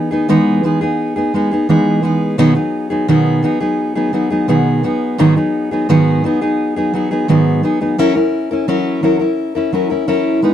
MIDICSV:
0, 0, Header, 1, 2, 480
1, 0, Start_track
1, 0, Tempo, 699301
1, 1640, Time_signature, 4, 2, 24, 8
1, 7234, End_track
2, 0, Start_track
2, 0, Title_t, "Steel-string acoustic guitar"
2, 0, Program_c, 0, 25
2, 0, Note_on_c, 0, 59, 53
2, 0, Note_on_c, 0, 63, 54
2, 74, Note_on_c, 0, 68, 65
2, 76, Note_off_c, 0, 63, 0
2, 82, Note_off_c, 0, 59, 0
2, 84, Note_on_c, 0, 63, 63
2, 90, Note_on_c, 0, 59, 58
2, 194, Note_off_c, 0, 59, 0
2, 195, Note_off_c, 0, 63, 0
2, 195, Note_on_c, 0, 52, 86
2, 198, Note_off_c, 0, 68, 0
2, 199, Note_on_c, 0, 56, 93
2, 202, Note_on_c, 0, 59, 99
2, 203, Note_on_c, 0, 63, 97
2, 208, Note_on_c, 0, 68, 104
2, 426, Note_off_c, 0, 56, 0
2, 432, Note_off_c, 0, 59, 0
2, 434, Note_on_c, 0, 56, 75
2, 437, Note_off_c, 0, 63, 0
2, 438, Note_off_c, 0, 52, 0
2, 441, Note_on_c, 0, 59, 72
2, 442, Note_off_c, 0, 68, 0
2, 445, Note_on_c, 0, 63, 66
2, 451, Note_on_c, 0, 68, 75
2, 548, Note_off_c, 0, 68, 0
2, 555, Note_off_c, 0, 63, 0
2, 556, Note_on_c, 0, 68, 65
2, 557, Note_off_c, 0, 56, 0
2, 561, Note_off_c, 0, 59, 0
2, 563, Note_on_c, 0, 63, 54
2, 572, Note_on_c, 0, 59, 55
2, 787, Note_off_c, 0, 68, 0
2, 795, Note_on_c, 0, 68, 62
2, 796, Note_off_c, 0, 63, 0
2, 802, Note_off_c, 0, 59, 0
2, 804, Note_on_c, 0, 63, 52
2, 811, Note_on_c, 0, 59, 52
2, 918, Note_off_c, 0, 59, 0
2, 918, Note_off_c, 0, 68, 0
2, 919, Note_on_c, 0, 56, 68
2, 922, Note_off_c, 0, 63, 0
2, 926, Note_on_c, 0, 59, 68
2, 931, Note_on_c, 0, 63, 67
2, 934, Note_on_c, 0, 68, 68
2, 1030, Note_off_c, 0, 68, 0
2, 1038, Note_on_c, 0, 68, 58
2, 1040, Note_off_c, 0, 56, 0
2, 1040, Note_off_c, 0, 63, 0
2, 1043, Note_off_c, 0, 59, 0
2, 1048, Note_on_c, 0, 63, 57
2, 1054, Note_on_c, 0, 59, 50
2, 1156, Note_off_c, 0, 59, 0
2, 1157, Note_off_c, 0, 63, 0
2, 1159, Note_off_c, 0, 68, 0
2, 1159, Note_on_c, 0, 52, 78
2, 1163, Note_on_c, 0, 56, 78
2, 1165, Note_on_c, 0, 59, 81
2, 1165, Note_on_c, 0, 63, 73
2, 1168, Note_on_c, 0, 68, 92
2, 1382, Note_off_c, 0, 56, 0
2, 1386, Note_off_c, 0, 59, 0
2, 1390, Note_on_c, 0, 56, 62
2, 1393, Note_off_c, 0, 63, 0
2, 1395, Note_on_c, 0, 59, 66
2, 1397, Note_off_c, 0, 68, 0
2, 1399, Note_off_c, 0, 52, 0
2, 1401, Note_on_c, 0, 63, 68
2, 1405, Note_on_c, 0, 68, 74
2, 1631, Note_off_c, 0, 59, 0
2, 1633, Note_off_c, 0, 63, 0
2, 1633, Note_off_c, 0, 68, 0
2, 1633, Note_on_c, 0, 47, 84
2, 1635, Note_off_c, 0, 56, 0
2, 1635, Note_on_c, 0, 51, 91
2, 1638, Note_on_c, 0, 54, 95
2, 1639, Note_on_c, 0, 59, 111
2, 1641, Note_on_c, 0, 63, 98
2, 1641, Note_on_c, 0, 68, 120
2, 1740, Note_off_c, 0, 68, 0
2, 1747, Note_off_c, 0, 63, 0
2, 1749, Note_on_c, 0, 68, 60
2, 1751, Note_off_c, 0, 59, 0
2, 1754, Note_off_c, 0, 54, 0
2, 1756, Note_off_c, 0, 47, 0
2, 1756, Note_on_c, 0, 63, 57
2, 1757, Note_off_c, 0, 51, 0
2, 1759, Note_on_c, 0, 59, 49
2, 1762, Note_on_c, 0, 54, 51
2, 1983, Note_off_c, 0, 68, 0
2, 1988, Note_off_c, 0, 63, 0
2, 1991, Note_off_c, 0, 59, 0
2, 1991, Note_on_c, 0, 68, 68
2, 1996, Note_on_c, 0, 63, 57
2, 1997, Note_off_c, 0, 54, 0
2, 2000, Note_on_c, 0, 59, 56
2, 2006, Note_on_c, 0, 54, 49
2, 2110, Note_off_c, 0, 54, 0
2, 2114, Note_off_c, 0, 59, 0
2, 2115, Note_off_c, 0, 63, 0
2, 2115, Note_off_c, 0, 68, 0
2, 2115, Note_on_c, 0, 47, 77
2, 2117, Note_on_c, 0, 51, 100
2, 2118, Note_on_c, 0, 54, 79
2, 2122, Note_on_c, 0, 59, 100
2, 2124, Note_on_c, 0, 63, 92
2, 2125, Note_on_c, 0, 68, 107
2, 2343, Note_off_c, 0, 54, 0
2, 2350, Note_off_c, 0, 59, 0
2, 2351, Note_on_c, 0, 54, 63
2, 2354, Note_off_c, 0, 63, 0
2, 2357, Note_off_c, 0, 47, 0
2, 2358, Note_off_c, 0, 51, 0
2, 2358, Note_on_c, 0, 59, 76
2, 2359, Note_off_c, 0, 68, 0
2, 2363, Note_on_c, 0, 63, 77
2, 2367, Note_on_c, 0, 68, 80
2, 2465, Note_off_c, 0, 68, 0
2, 2470, Note_off_c, 0, 63, 0
2, 2473, Note_on_c, 0, 68, 62
2, 2475, Note_off_c, 0, 54, 0
2, 2475, Note_off_c, 0, 59, 0
2, 2478, Note_on_c, 0, 63, 57
2, 2483, Note_on_c, 0, 59, 51
2, 2489, Note_on_c, 0, 54, 50
2, 2706, Note_off_c, 0, 68, 0
2, 2710, Note_off_c, 0, 63, 0
2, 2714, Note_on_c, 0, 68, 61
2, 2716, Note_off_c, 0, 59, 0
2, 2718, Note_on_c, 0, 63, 59
2, 2719, Note_off_c, 0, 54, 0
2, 2724, Note_on_c, 0, 59, 60
2, 2727, Note_on_c, 0, 54, 48
2, 2825, Note_off_c, 0, 54, 0
2, 2831, Note_off_c, 0, 59, 0
2, 2833, Note_on_c, 0, 54, 63
2, 2835, Note_off_c, 0, 63, 0
2, 2836, Note_off_c, 0, 68, 0
2, 2839, Note_on_c, 0, 59, 70
2, 2843, Note_on_c, 0, 63, 64
2, 2847, Note_on_c, 0, 68, 75
2, 2946, Note_off_c, 0, 68, 0
2, 2953, Note_off_c, 0, 63, 0
2, 2954, Note_on_c, 0, 68, 61
2, 2956, Note_off_c, 0, 54, 0
2, 2957, Note_off_c, 0, 59, 0
2, 2962, Note_on_c, 0, 63, 53
2, 2965, Note_on_c, 0, 59, 51
2, 2970, Note_on_c, 0, 54, 48
2, 3071, Note_off_c, 0, 54, 0
2, 3074, Note_off_c, 0, 59, 0
2, 3074, Note_on_c, 0, 47, 75
2, 3076, Note_off_c, 0, 63, 0
2, 3076, Note_off_c, 0, 68, 0
2, 3078, Note_on_c, 0, 51, 83
2, 3080, Note_on_c, 0, 54, 79
2, 3082, Note_on_c, 0, 59, 81
2, 3085, Note_on_c, 0, 63, 80
2, 3086, Note_on_c, 0, 68, 89
2, 3308, Note_off_c, 0, 54, 0
2, 3314, Note_off_c, 0, 59, 0
2, 3316, Note_off_c, 0, 47, 0
2, 3316, Note_on_c, 0, 54, 62
2, 3318, Note_off_c, 0, 51, 0
2, 3319, Note_off_c, 0, 63, 0
2, 3322, Note_off_c, 0, 68, 0
2, 3322, Note_on_c, 0, 59, 73
2, 3327, Note_on_c, 0, 63, 71
2, 3331, Note_on_c, 0, 68, 67
2, 3554, Note_off_c, 0, 54, 0
2, 3557, Note_off_c, 0, 59, 0
2, 3558, Note_on_c, 0, 44, 103
2, 3559, Note_off_c, 0, 63, 0
2, 3561, Note_off_c, 0, 68, 0
2, 3562, Note_on_c, 0, 54, 101
2, 3563, Note_on_c, 0, 51, 97
2, 3565, Note_on_c, 0, 59, 99
2, 3567, Note_on_c, 0, 63, 106
2, 3569, Note_on_c, 0, 68, 115
2, 3670, Note_off_c, 0, 68, 0
2, 3677, Note_off_c, 0, 63, 0
2, 3678, Note_off_c, 0, 44, 0
2, 3679, Note_on_c, 0, 68, 59
2, 3680, Note_off_c, 0, 54, 0
2, 3681, Note_off_c, 0, 51, 0
2, 3682, Note_off_c, 0, 59, 0
2, 3685, Note_on_c, 0, 63, 60
2, 3690, Note_on_c, 0, 59, 62
2, 3694, Note_on_c, 0, 54, 49
2, 3913, Note_off_c, 0, 68, 0
2, 3920, Note_off_c, 0, 63, 0
2, 3921, Note_on_c, 0, 68, 58
2, 3924, Note_off_c, 0, 59, 0
2, 3926, Note_off_c, 0, 54, 0
2, 3928, Note_on_c, 0, 63, 63
2, 3933, Note_on_c, 0, 59, 59
2, 3934, Note_on_c, 0, 54, 51
2, 4038, Note_off_c, 0, 54, 0
2, 4039, Note_off_c, 0, 59, 0
2, 4040, Note_off_c, 0, 68, 0
2, 4041, Note_off_c, 0, 63, 0
2, 4041, Note_on_c, 0, 44, 85
2, 4043, Note_on_c, 0, 51, 100
2, 4046, Note_on_c, 0, 54, 94
2, 4048, Note_on_c, 0, 59, 104
2, 4049, Note_on_c, 0, 63, 96
2, 4052, Note_on_c, 0, 68, 105
2, 4274, Note_off_c, 0, 54, 0
2, 4280, Note_off_c, 0, 44, 0
2, 4281, Note_off_c, 0, 51, 0
2, 4282, Note_on_c, 0, 54, 74
2, 4283, Note_off_c, 0, 59, 0
2, 4283, Note_off_c, 0, 63, 0
2, 4285, Note_off_c, 0, 68, 0
2, 4290, Note_on_c, 0, 59, 76
2, 4296, Note_on_c, 0, 63, 78
2, 4297, Note_on_c, 0, 68, 76
2, 4394, Note_off_c, 0, 68, 0
2, 4399, Note_off_c, 0, 63, 0
2, 4400, Note_off_c, 0, 54, 0
2, 4402, Note_on_c, 0, 68, 64
2, 4404, Note_off_c, 0, 59, 0
2, 4407, Note_on_c, 0, 63, 65
2, 4411, Note_on_c, 0, 59, 53
2, 4417, Note_on_c, 0, 54, 52
2, 4634, Note_off_c, 0, 68, 0
2, 4640, Note_off_c, 0, 63, 0
2, 4642, Note_off_c, 0, 59, 0
2, 4642, Note_on_c, 0, 68, 67
2, 4647, Note_off_c, 0, 54, 0
2, 4649, Note_on_c, 0, 63, 59
2, 4650, Note_on_c, 0, 59, 52
2, 4656, Note_on_c, 0, 54, 48
2, 4752, Note_off_c, 0, 54, 0
2, 4758, Note_off_c, 0, 59, 0
2, 4760, Note_off_c, 0, 68, 0
2, 4760, Note_on_c, 0, 54, 75
2, 4763, Note_off_c, 0, 63, 0
2, 4766, Note_on_c, 0, 59, 68
2, 4771, Note_on_c, 0, 63, 65
2, 4777, Note_on_c, 0, 68, 75
2, 4871, Note_off_c, 0, 68, 0
2, 4876, Note_off_c, 0, 63, 0
2, 4879, Note_off_c, 0, 54, 0
2, 4879, Note_on_c, 0, 68, 59
2, 4882, Note_off_c, 0, 59, 0
2, 4884, Note_on_c, 0, 63, 59
2, 4890, Note_on_c, 0, 59, 55
2, 4894, Note_on_c, 0, 54, 53
2, 4995, Note_off_c, 0, 54, 0
2, 4998, Note_off_c, 0, 68, 0
2, 4998, Note_on_c, 0, 44, 92
2, 5000, Note_off_c, 0, 59, 0
2, 5001, Note_off_c, 0, 63, 0
2, 5003, Note_on_c, 0, 51, 89
2, 5003, Note_on_c, 0, 54, 86
2, 5008, Note_on_c, 0, 59, 88
2, 5008, Note_on_c, 0, 63, 90
2, 5010, Note_on_c, 0, 68, 92
2, 5229, Note_off_c, 0, 54, 0
2, 5235, Note_off_c, 0, 59, 0
2, 5237, Note_on_c, 0, 54, 61
2, 5238, Note_off_c, 0, 44, 0
2, 5240, Note_off_c, 0, 51, 0
2, 5241, Note_off_c, 0, 63, 0
2, 5243, Note_on_c, 0, 59, 64
2, 5244, Note_off_c, 0, 68, 0
2, 5249, Note_on_c, 0, 63, 72
2, 5251, Note_on_c, 0, 68, 77
2, 5350, Note_off_c, 0, 68, 0
2, 5355, Note_off_c, 0, 63, 0
2, 5357, Note_off_c, 0, 54, 0
2, 5358, Note_off_c, 0, 59, 0
2, 5358, Note_on_c, 0, 68, 56
2, 5364, Note_on_c, 0, 63, 56
2, 5367, Note_on_c, 0, 59, 51
2, 5372, Note_on_c, 0, 54, 45
2, 5472, Note_off_c, 0, 54, 0
2, 5478, Note_off_c, 0, 68, 0
2, 5480, Note_off_c, 0, 63, 0
2, 5480, Note_on_c, 0, 54, 98
2, 5481, Note_off_c, 0, 59, 0
2, 5484, Note_on_c, 0, 61, 107
2, 5486, Note_on_c, 0, 64, 113
2, 5491, Note_on_c, 0, 70, 106
2, 5588, Note_off_c, 0, 70, 0
2, 5597, Note_on_c, 0, 70, 71
2, 5598, Note_off_c, 0, 64, 0
2, 5599, Note_off_c, 0, 54, 0
2, 5601, Note_off_c, 0, 61, 0
2, 5607, Note_on_c, 0, 64, 59
2, 5612, Note_on_c, 0, 61, 52
2, 5831, Note_off_c, 0, 70, 0
2, 5837, Note_off_c, 0, 64, 0
2, 5840, Note_on_c, 0, 70, 70
2, 5845, Note_off_c, 0, 61, 0
2, 5846, Note_on_c, 0, 64, 58
2, 5855, Note_on_c, 0, 61, 53
2, 5953, Note_off_c, 0, 61, 0
2, 5955, Note_off_c, 0, 64, 0
2, 5956, Note_on_c, 0, 54, 89
2, 5959, Note_off_c, 0, 70, 0
2, 5961, Note_on_c, 0, 61, 97
2, 5963, Note_on_c, 0, 64, 102
2, 5967, Note_on_c, 0, 70, 99
2, 6187, Note_off_c, 0, 54, 0
2, 6192, Note_off_c, 0, 61, 0
2, 6196, Note_on_c, 0, 54, 72
2, 6197, Note_off_c, 0, 64, 0
2, 6200, Note_on_c, 0, 61, 73
2, 6201, Note_off_c, 0, 70, 0
2, 6205, Note_on_c, 0, 64, 75
2, 6209, Note_on_c, 0, 70, 80
2, 6302, Note_off_c, 0, 70, 0
2, 6310, Note_on_c, 0, 70, 64
2, 6312, Note_off_c, 0, 64, 0
2, 6316, Note_off_c, 0, 61, 0
2, 6317, Note_off_c, 0, 54, 0
2, 6320, Note_on_c, 0, 64, 56
2, 6325, Note_on_c, 0, 61, 47
2, 6547, Note_off_c, 0, 70, 0
2, 6555, Note_off_c, 0, 64, 0
2, 6555, Note_on_c, 0, 70, 64
2, 6561, Note_off_c, 0, 61, 0
2, 6563, Note_on_c, 0, 64, 63
2, 6571, Note_on_c, 0, 61, 51
2, 6673, Note_off_c, 0, 61, 0
2, 6675, Note_on_c, 0, 54, 65
2, 6676, Note_off_c, 0, 70, 0
2, 6679, Note_off_c, 0, 64, 0
2, 6681, Note_on_c, 0, 61, 70
2, 6687, Note_on_c, 0, 64, 74
2, 6690, Note_on_c, 0, 70, 74
2, 6786, Note_off_c, 0, 70, 0
2, 6794, Note_off_c, 0, 64, 0
2, 6794, Note_on_c, 0, 70, 64
2, 6797, Note_off_c, 0, 54, 0
2, 6799, Note_off_c, 0, 61, 0
2, 6802, Note_on_c, 0, 64, 59
2, 6809, Note_on_c, 0, 61, 46
2, 6909, Note_off_c, 0, 61, 0
2, 6914, Note_off_c, 0, 64, 0
2, 6916, Note_off_c, 0, 70, 0
2, 6916, Note_on_c, 0, 54, 71
2, 6917, Note_on_c, 0, 61, 91
2, 6922, Note_on_c, 0, 64, 94
2, 6926, Note_on_c, 0, 70, 95
2, 7152, Note_off_c, 0, 54, 0
2, 7155, Note_on_c, 0, 56, 68
2, 7157, Note_off_c, 0, 61, 0
2, 7160, Note_off_c, 0, 64, 0
2, 7160, Note_on_c, 0, 59, 67
2, 7162, Note_off_c, 0, 70, 0
2, 7165, Note_on_c, 0, 63, 80
2, 7170, Note_on_c, 0, 71, 77
2, 7234, Note_off_c, 0, 56, 0
2, 7234, Note_off_c, 0, 59, 0
2, 7234, Note_off_c, 0, 63, 0
2, 7234, Note_off_c, 0, 71, 0
2, 7234, End_track
0, 0, End_of_file